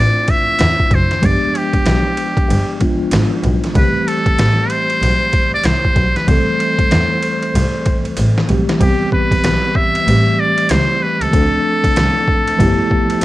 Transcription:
Already playing: tine electric piano A3 C4 D4 E4 F4
0.00 muted trumpet D5
0.28 muted trumpet E5, kick, ride
0.59 double bass E2, snare, hi-hat pedal, ride
0.80 kick
0.91 double bass F#1, muted trumpet C5, kick, ride
1.11 snare, ride
1.20 double bass G1, tine electric piano F3 G#3 B3, kick, ride
1.24 tine electric piano D4 G4, muted trumpet D5
1.55 muted trumpet G4, ride
1.73 kick, ride
1.86 double bass B1, snare, hi-hat pedal, ride
2.17 ride
2.37 kick, ride
2.49 double bass G1, ride
2.79 tine electric piano F3 G#3 B3 D4 F4, kick, ride
3.11 double bass G#1, snare, hi-hat pedal, ride
3.44 double bass B1, ride
3.64 snare, ride
3.72 double bass C2, tine electric piano D3 G3 A3, kick, ride
3.77 tine electric piano E3 C4 G4, muted trumpet B4
4.08 muted trumpet A4, ride
4.26 kick, ride
4.38 double bass A1, snare, hi-hat pedal, ride
4.70 muted trumpet C5, ride
4.90 ride
5.02 double bass B1, ride
5.33 kick, ride
5.54 muted trumpet D5
5.64 double bass C2, muted trumpet C5, snare, hi-hat pedal, ride
5.85 kick
5.96 double bass B1, kick, ride
6.16 muted trumpet B4, snare, ride
6.25 double bass C2, tine electric piano E3 G3 A3, muted trumpet C5, kick, ride
6.29 tine electric piano C4 A4
6.60 ride
6.79 kick, ride
6.91 double bass E2, snare, hi-hat pedal, ride
7.23 ride
7.43 ride
7.55 double bass C2, ride
7.86 kick, ride
8.05 ride
8.17 double bass A1, hi-hat pedal, ride
8.38 snare
8.47 double bass B1, tine electric piano E3 G3 A3 C4 G4, ride
8.69 snare, ride
8.78 double bass C2, tine electric piano E3 G3 B3, muted trumpet G4, kick, ride
8.82 tine electric piano C4 G4
9.12 muted trumpet B4, kick
9.31 double bass B1, kick, ride
9.44 double bass B1, snare, hi-hat pedal, ride
9.75 muted trumpet E5, kick
9.95 ride
10.04 double bass A1, tine electric piano E3 G3 A3, ride
10.09 tine electric piano C4 G4
10.40 muted trumpet D5
10.58 ride
10.69 double bass C#2, muted trumpet C5, snare, hi-hat pedal, ride
11.02 muted trumpet B4
11.21 double bass C#2, muted trumpet A4, ride
11.30 double bass D2, tine electric piano F3 A3 C4, kick, ride
11.34 tine electric piano D4 A4
11.84 double bass C2, kick, ride
11.96 double bass C2, snare, hi-hat pedal, ride
12.28 kick
12.47 ride
12.56 double bass G1, tine electric piano F3 A3 B3, kick, ride
12.61 tine electric piano E4 G4
12.91 kick
13.10 ride
13.21 hi-hat pedal, ride

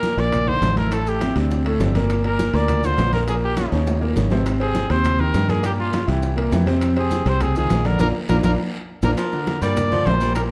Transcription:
Already playing: grand piano A#2 A#3 A#4, trumpet A#4
0.03 high bongo, high conga, low timbale, short guiro, maracas
0.17 fingered electric bass A#1, grand piano A#2 A#3 A#4, trumpet D5, high bongo, high conga, high timbale, short guiro, maracas
0.32 high bongo, high conga, low conga, high timbale, maracas
0.46 grand piano D3 D4 D#4, trumpet C5, high bongo, high conga, low conga
0.62 fingered electric bass A1, high bongo, low bongo, high conga, high timbale, low timbale, short guiro, maracas
0.76 grand piano A2 A3 A4, trumpet A#4, high conga, high timbale, short guiro, maracas
0.91 grand piano A2 A3 A4, trumpet A4, high bongo, high timbale, long guiro, maracas
1.07 trumpet G4, high conga, maracas
1.20 grand piano C3 C4 E4, high bongo, high conga, high timbale, low timbale, short guiro, maracas
1.35 fingered electric bass D2, grand piano C3 C4 D4, high bongo, high timbale, short guiro, maracas
1.50 high bongo, high conga, long guiro, maracas
1.65 grand piano A2 A3 A4, high bongo, high conga, high timbale
1.80 fingered electric bass G1, grand piano C3 C4 D4, high bongo, low bongo, high conga, low timbale, short guiro, maracas
1.95 grand piano A#2 A#3 A#4, high bongo, high conga, high timbale, short guiro, maracas
2.10 high bongo, high conga, high timbale, long guiro, maracas
2.24 grand piano A#2 A#3 A#4, trumpet A#4, high bongo, high conga, high timbale
2.39 high bongo, high conga, low timbale, short guiro, maracas
2.53 fingered electric bass D2, grand piano A#2 A#3 A#4, trumpet D5, high bongo, high conga, high timbale, short guiro, maracas
2.68 high bongo, high conga, low conga, high timbale, long guiro, maracas
2.83 grand piano D3 D4 F4, trumpet C5, high bongo, high conga, low conga, maracas
2.98 fingered electric bass A#1, high bongo, low bongo, high conga, high timbale, low timbale, short guiro, maracas
3.13 grand piano A#2 A#3 A#4, trumpet A#4, high conga, high timbale, short guiro, maracas
3.28 grand piano A#2 A#3 A#4, trumpet G#4, high bongo, high timbale, long guiro, maracas
3.42 trumpet G4, high conga
3.57 grand piano C#3 C#4 F4, high bongo, high conga, high timbale, low timbale, short guiro, maracas
3.72 fingered electric bass D#2, grand piano C#3 C#4 D#4, high bongo, high conga, high timbale, short guiro, maracas
3.87 high bongo, high conga, low timbale, long guiro, maracas
4.01 grand piano A#2 A#3 A#4, high bongo, high conga
4.16 fingered electric bass G#1, grand piano C#3 C#4 D#4, high bongo, low bongo, high conga, short guiro, maracas
4.30 grand piano C3 C4 C5, high bongo, high conga, low timbale, short guiro, maracas
4.46 high bongo, high timbale, long guiro, maracas
4.59 grand piano C3 C4 C5, trumpet G#4, high bongo, high conga, high timbale
4.75 high bongo, high conga, low timbale, short guiro, maracas
4.90 fingered electric bass D#2, grand piano C3 C4 C5, trumpet C5, high bongo, high conga, high timbale, short guiro, maracas
5.04 high bongo, high conga, low conga, high timbale, long guiro, maracas
5.19 grand piano D#3 D#4 G4, trumpet A#4, high bongo, high conga, low conga
5.34 fingered electric bass G2, high bongo, low bongo, high conga, high timbale, low timbale, short guiro, maracas
5.49 grand piano A#2 A#3 A#4, trumpet G#4, high conga, high timbale, short guiro, maracas
5.63 grand piano A#2 A#3 A#4, trumpet G4, high bongo, high conga, high timbale, long guiro, maracas
5.78 trumpet F4, high conga
5.93 grand piano C#3 C#4 F4, high bongo, high conga, high timbale, low timbale, short guiro, maracas
6.07 fingered electric bass C2, grand piano E3 E4 G4, high bongo, high conga, high timbale, short guiro, maracas
6.22 high bongo, high conga, long guiro, maracas
6.36 grand piano A#2 A#3 A#4, high bongo, high conga, high timbale
6.51 fingered electric bass F2, grand piano E3 E4 G4, high bongo, low bongo, high conga, low timbale, short guiro, maracas
6.66 grand piano C3 C4 C5, high bongo, high conga, high timbale, short guiro, maracas
6.81 high bongo, high conga, high timbale, long guiro, maracas
6.96 grand piano C3 C4 C5, trumpet G#4, high bongo, high conga, high timbale
7.11 high bongo, high conga, low timbale, short guiro, maracas
7.25 fingered electric bass C2, grand piano C3 C4 C5, trumpet C5, high bongo, high timbale, short guiro, maracas
7.41 trumpet G#4, high bongo, high conga, low conga, high timbale, long guiro, maracas
7.56 grand piano D#3 D#4 F4, trumpet G#4, high bongo, high conga, low conga, maracas
7.70 fingered electric bass A#1, high bongo, low bongo, high conga, high timbale, low timbale, short guiro, maracas
7.84 grand piano D3 D4 D5, trumpet A#4, high conga, high timbale, short guiro, maracas
7.99 fingered electric bass A#1, grand piano A#3 D4 F4, trumpet A#4, high bongo, high conga, high timbale, long guiro, maracas
8.29 fingered electric bass A#1, grand piano A#3 D4 F4, trumpet A#4, high bongo, high conga, high timbale, long guiro, maracas
8.43 fingered electric bass A#1, grand piano A#3 D4 F4, trumpet A#4, high bongo, high conga, high timbale, long guiro, maracas
9.02 fingered electric bass A#1, grand piano A#3 D4 F4, trumpet A#4, high bongo, high conga, high timbale, long guiro, maracas
9.17 baritone saxophone F3, trumpet A#4, high bongo, high conga, high timbale, long guiro, maracas
9.32 grand piano D3 D4 D5, high bongo, high conga, maracas
9.47 high bongo, high conga, high timbale, low timbale, short guiro, maracas
9.62 fingered electric bass G2, grand piano A#2 A#3 A#4, baritone saxophone G3, trumpet D5, high bongo, short guiro, maracas
9.77 high bongo, high conga, low conga, high timbale, maracas
9.91 grand piano D3 D4 D5, baritone saxophone F3, high bongo, high conga, low conga, maracas
10.06 fingered electric bass A#1, grand piano A#2 A#3 A#4, trumpet C5, high bongo, low bongo, high conga, high timbale, low timbale, short guiro, maracas
10.20 baritone saxophone G3, short guiro, maracas
10.35 grand piano A#2 A#3 A#4, trumpet A#4, high bongo, high timbale, long guiro, maracas

